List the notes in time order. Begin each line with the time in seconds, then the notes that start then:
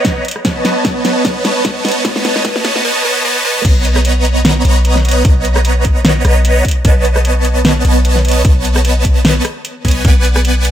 Already playing: B1 B3 B4 C#5 D#5 A#5
0.05 kick, snare, closed hi-hat
0.25 closed hi-hat
0.28 closed hi-hat
0.31 closed hi-hat
0.36 cross-stick
0.45 B1 B3 B4 C#5 D#5 A5, kick, snare, closed hi-hat
0.65 snare, closed hi-hat
0.85 kick, snare, closed hi-hat
1.05 snare, closed hi-hat
1.25 B3 B4 C#5 D#5 A5, kick, snare, closed hi-hat
1.45 snare, closed hi-hat
1.65 kick, snare, closed hi-hat
1.85 snare, closed hi-hat
1.88 closed hi-hat
1.91 closed hi-hat
2.05 B3 B4 C#5 D#5 A5, kick, snare, closed hi-hat
2.16 snare
2.25 snare, closed hi-hat
2.36 snare
2.45 B3 B4 C#5 D#5 A5, kick, snare, closed hi-hat
2.56 snare
2.65 snare, closed hi-hat
2.76 snare
2.85 B3 B4 C#5 D#5 A5
3.05 B3 B4 C#5 D#5 A5
3.25 B3 B4 C#5 D#5 A5
3.45 B3 B4 C#5 D#5 A5
3.65 B1 B3 B4 C#5 D#5 A#5, kick, closed hi-hat, crash
3.85 closed hi-hat
3.96 cross-stick
4.05 closed hi-hat
4.25 closed hi-hat
4.45 snare, closed hi-hat
4.65 B1 B3 B4 C#5 D#5 A#5, closed hi-hat
4.85 closed hi-hat
4.96 snare
5.05 closed hi-hat
5.09 closed hi-hat
5.11 closed hi-hat
5.25 B1 B3 B4 C#5 D#5 A#5, kick, closed hi-hat
5.45 closed hi-hat
5.56 cross-stick
5.65 closed hi-hat
5.85 kick, closed hi-hat
6.05 snare, closed hi-hat
6.25 B1 B3 B4 C#5 D#5 A#5, cross-stick, closed hi-hat
6.45 closed hi-hat
6.65 kick, closed hi-hat
6.68 closed hi-hat
6.71 closed hi-hat
6.85 B1 B3 B4 C#5 D#5 A5, kick, closed hi-hat
7.05 closed hi-hat
7.16 cross-stick
7.25 closed hi-hat
7.45 closed hi-hat
7.65 snare, closed hi-hat
7.85 B1 B3 B4 C#5 D#5 A5, closed hi-hat
8.05 closed hi-hat
8.16 snare
8.25 closed hi-hat
8.28 closed hi-hat
8.31 closed hi-hat
8.45 B1 B3 B4 C#5 D#5 A5, kick, closed hi-hat
8.65 closed hi-hat
8.76 cross-stick
8.85 closed hi-hat
9.05 kick, closed hi-hat
9.25 snare, closed hi-hat
9.45 cross-stick, closed hi-hat
9.65 closed hi-hat
9.85 B1 B3 B4 C#5 D#5 G#5, kick, closed hi-hat
9.88 closed hi-hat
9.91 closed hi-hat
10.05 B1 B3 B4 D5 F#5 G#5, kick, closed hi-hat
10.25 closed hi-hat
10.36 cross-stick
10.45 closed hi-hat
10.65 closed hi-hat